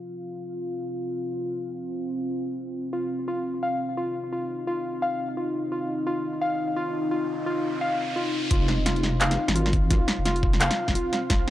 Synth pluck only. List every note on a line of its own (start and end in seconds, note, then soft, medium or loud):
2.93 3.10 F4 medium
3.28 3.39 F4 loud
3.63 3.79 F5 loud
3.97 4.14 F4 medium
4.33 4.49 F4 medium
4.67 5.01 F4 loud
5.02 5.19 F5 loud
5.37 5.71 F4 medium
5.72 5.89 F4 medium
6.07 6.18 F4 loud
6.42 6.58 F5 loud
6.77 6.93 F4 loud
7.11 7.28 F4 medium
7.46 7.80 F4 loud
7.81 7.98 F5 loud
8.16 8.32 F4 medium
8.51 8.68 F4 medium
8.86 8.97 F4 loud
9.21 9.37 F5 loud
9.55 9.72 F4 loud
9.90 10.07 F4 medium
10.25 10.59 F4 loud
10.61 10.77 F5 loud
10.95 11.29 F4 medium
11.30 11.47 F4 medium